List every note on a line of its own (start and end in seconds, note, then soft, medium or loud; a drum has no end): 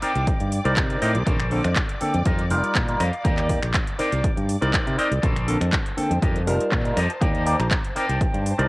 0.00 0.11 C4 medium
0.00 0.52 D#4 loud
0.00 0.11 D#4 medium
0.00 0.52 A#4 medium
0.00 0.12 A#4 medium
0.00 0.52 C5 medium
0.00 5.24 D5 medium
0.00 0.12 D5 medium
0.00 0.52 D5 loud
0.00 0.72 G5 loud
0.00 5.24 D6 medium
0.00 muted fingered electric bass stroke soft
0.00 open hi-hat medium
0.16 0.24 C2 medium
0.16 closed hi-hat soft
0.27 kick loud
0.27 closed hi-hat medium
0.40 0.58 G2 medium
0.40 closed hi-hat soft
0.52 open hi-hat loud
0.64 0.74 C2 loud
0.64 0.74 C4 loud
0.64 0.74 D#4 medium
0.64 0.74 A#4 medium
0.64 0.74 D5 loud
0.64 muted clean electric guitar stroke medium
0.64 closed hi-hat soft
0.77 0.96 C3 loud
0.77 0.99 C4 medium
0.77 kick loud
0.77 clap loud
0.77 closed hi-hat medium
0.90 closed hi-hat soft
1.01 1.16 A2 medium
1.01 1.11 C4 medium
1.01 1.14 D#4 medium
1.01 1.11 D#4 medium
1.01 1.15 A#4 medium
1.01 1.11 A#4 medium
1.01 1.15 C5 medium
1.01 1.15 D5 loud
1.01 1.11 D#5 loud
1.01 open hi-hat medium
1.15 1.23 C2 medium
1.15 closed hi-hat soft
1.25 1.59 A#1 loud
1.25 1.35 D3 medium
1.25 1.35 A#3 medium
1.25 1.36 C4 medium
1.25 1.75 A4 loud
1.25 1.36 A4 loud
1.25 1.76 A#4 loud
1.25 1.76 C5 loud
1.25 1.76 D5 loud
1.25 kick loud
1.25 closed hi-hat medium
1.39 finger snap medium
1.39 closed hi-hat soft
1.51 1.60 D3 medium
1.51 1.60 A#3 medium
1.51 1.61 C4 medium
1.51 1.61 A4 loud
1.51 open hi-hat loud
1.64 1.73 F2 loud
1.64 finger snap medium
1.64 closed hi-hat soft
1.76 kick loud
1.76 clap loud
1.76 closed hi-hat medium
1.89 closed hi-hat soft
2.01 2.15 D3 medium
2.01 2.15 A#3 medium
2.01 2.15 C4 medium
2.01 2.15 A4 medium
2.01 2.20 G5 medium
2.01 muted fingered electric bass stroke soft
2.01 open hi-hat medium
2.14 2.23 F2 medium
2.14 closed hi-hat soft
2.25 2.52 F2 medium
2.25 2.40 G3 medium
2.25 2.40 D#4 medium
2.25 2.44 F4 medium
2.25 2.40 F4 medium
2.25 2.44 G4 medium
2.25 2.45 A#4 medium
2.25 2.40 A#4 medium
2.25 2.45 D#5 loud
2.25 kick loud
2.25 closed hi-hat medium
2.39 closed hi-hat soft
2.50 2.60 F1 loud
2.50 2.85 G3 medium
2.50 2.85 D#4 medium
2.50 2.85 F4 medium
2.50 2.85 A#4 loud
2.50 open hi-hat loud
2.63 muted clean electric guitar stroke medium
2.63 muted fingered electric bass stroke soft
2.63 closed hi-hat soft
2.75 2.94 A#2 medium
2.75 kick loud
2.75 clap loud
2.75 closed hi-hat medium
2.88 3.01 G3 medium
2.88 3.01 D#4 medium
2.88 3.02 F4 medium
2.88 3.02 A#4 medium
2.88 closed hi-hat soft
2.99 3.10 F2 loud
2.99 3.13 F4 medium
2.99 3.13 G4 medium
2.99 3.13 A#4 medium
2.99 3.14 D#5 loud
2.99 3.30 F5 medium
2.99 finger snap medium
2.99 open hi-hat medium
3.13 closed hi-hat soft
3.24 3.57 D#2 loud
3.24 3.47 A#3 medium
3.24 3.74 D#4 loud
3.24 3.47 D#4 medium
3.24 3.74 G4 loud
3.24 3.47 G4 medium
3.24 3.75 A#4 loud
3.24 3.47 D5 loud
3.24 3.75 D5 loud
3.24 kick loud
3.24 closed hi-hat medium
3.38 finger snap medium
3.38 clap soft
3.38 closed hi-hat soft
3.49 3.58 A#3 medium
3.49 3.58 D#4 medium
3.49 3.59 G4 medium
3.49 3.59 D5 loud
3.49 kick medium
3.49 open hi-hat loud
3.63 3.71 A#1 loud
3.63 finger snap medium
3.63 closed hi-hat soft
3.74 kick loud
3.74 clap loud
3.74 closed hi-hat medium
3.87 closed hi-hat soft
3.98 4.08 C4 medium
3.98 4.48 D#4 medium
3.98 4.08 D#4 medium
3.98 4.49 A#4 medium
3.98 4.08 A#4 medium
3.98 4.49 C5 medium
3.98 4.08 D5 medium
3.98 4.49 D5 loud
3.98 muted fingered electric bass stroke soft
3.98 open hi-hat medium
4.12 4.21 C2 medium
4.12 4.30 D5 medium
4.12 closed hi-hat soft
4.24 kick loud
4.24 closed hi-hat medium
4.37 4.55 G2 medium
4.37 closed hi-hat soft
4.49 open hi-hat loud
4.61 4.71 C2 loud
4.61 4.70 C4 loud
4.61 4.71 D#4 medium
4.61 4.71 A#4 medium
4.61 4.71 D5 loud
4.61 muted clean electric guitar stroke medium
4.61 closed hi-hat soft
4.73 4.95 C4 medium
4.73 4.95 D#4 medium
4.73 4.96 A#4 medium
4.73 4.96 D5 loud
4.73 kick loud
4.73 clap loud
4.73 closed hi-hat medium
4.87 4.95 C3 medium
4.87 closed hi-hat soft
4.97 5.07 C4 loud
4.97 5.11 D#4 medium
4.97 5.07 D#4 medium
4.97 5.11 A#4 medium
4.97 5.08 A#4 medium
4.97 5.11 C5 medium
4.97 5.28 D5 loud
4.97 5.12 D5 loud
4.97 5.08 D#5 loud
4.97 muted fingered electric bass stroke soft
4.97 open hi-hat medium
5.11 5.20 C2 medium
5.11 closed hi-hat soft
5.22 5.56 A#1 loud
5.22 5.32 D3 medium
5.22 5.32 A#3 medium
5.22 5.32 C4 medium
5.22 5.72 A4 loud
5.22 5.32 A4 loud
5.22 5.72 A#4 loud
5.22 5.73 C5 loud
5.22 8.68 C5 medium
5.22 5.73 D5 loud
5.22 8.68 A5 medium
5.22 kick loud
5.22 closed hi-hat medium
5.36 finger snap medium
5.36 closed hi-hat soft
5.47 5.57 D3 medium
5.47 5.57 A#3 medium
5.47 5.57 C4 medium
5.47 5.57 A4 loud
5.47 open hi-hat loud
5.61 5.70 F2 loud
5.61 finger snap medium
5.61 closed hi-hat soft
5.73 kick loud
5.73 clap loud
5.73 closed hi-hat medium
5.86 closed hi-hat soft
5.97 6.12 D3 medium
5.97 6.12 A#3 medium
5.97 6.12 C4 medium
5.97 6.12 A4 medium
5.97 6.16 G5 medium
5.97 muted fingered electric bass stroke soft
5.97 open hi-hat medium
6.11 6.19 F2 medium
6.11 closed hi-hat soft
6.21 6.37 G3 medium
6.21 6.37 D#4 medium
6.21 6.41 F4 medium
6.21 6.37 F4 medium
6.21 6.41 G4 medium
6.21 6.41 A#4 medium
6.21 6.37 A#4 medium
6.21 6.42 D#5 loud
6.21 kick loud
6.21 closed hi-hat medium
6.36 closed hi-hat soft
6.47 6.57 F1 loud
6.47 6.82 G3 medium
6.47 6.82 D#4 medium
6.47 6.82 F4 medium
6.47 6.82 A#4 loud
6.47 open hi-hat loud
6.60 muted clean electric guitar stroke medium
6.60 muted fingered electric bass stroke soft
6.60 closed hi-hat soft
6.72 6.91 A#2 medium
6.72 kick loud
6.72 clap loud
6.72 closed hi-hat medium
6.85 6.98 G3 medium
6.85 6.98 D#4 medium
6.85 6.98 F4 medium
6.85 6.98 A#4 medium
6.85 closed hi-hat soft
6.96 7.06 F2 loud
6.96 7.09 F4 medium
6.96 7.10 G4 medium
6.96 7.10 A#4 medium
6.96 7.10 D#5 loud
6.96 finger snap medium
6.96 open hi-hat medium
7.10 closed hi-hat soft
7.21 7.54 D#2 loud
7.21 7.43 A#3 medium
7.21 7.71 D#4 loud
7.21 7.43 D#4 medium
7.21 7.71 G4 loud
7.21 7.44 G4 medium
7.21 7.71 A#4 loud
7.21 7.44 D5 loud
7.21 7.72 D5 loud
7.21 kick loud
7.21 closed hi-hat medium
7.35 closed hi-hat soft
7.46 7.55 A#3 medium
7.46 7.55 D#4 medium
7.46 7.56 G4 medium
7.46 7.56 D5 loud
7.46 open hi-hat loud
7.59 7.68 A#1 loud
7.59 7.67 A#5 medium
7.59 finger snap medium
7.59 closed hi-hat soft
7.71 7.79 A#5 medium
7.71 kick loud
7.71 clap loud
7.71 closed hi-hat medium
7.85 closed hi-hat soft
7.95 8.05 C4 medium
7.95 8.45 D#4 loud
7.95 8.05 D#4 medium
7.95 8.45 A#4 medium
7.95 8.05 A#4 medium
7.95 8.46 C5 medium
7.95 8.05 D5 medium
7.95 8.46 D5 loud
7.95 8.65 G5 medium
7.95 muted fingered electric bass stroke soft
7.95 open hi-hat medium
8.09 8.18 C2 medium
8.09 closed hi-hat soft
8.21 kick loud
8.21 closed hi-hat medium
8.34 8.52 G2 medium
8.34 closed hi-hat soft
8.46 open hi-hat loud
8.58 8.67 C2 loud
8.58 8.67 C4 loud
8.58 8.67 D#4 medium
8.58 8.67 A#4 medium
8.58 8.68 D5 loud
8.58 muted clean electric guitar stroke medium
8.58 closed hi-hat soft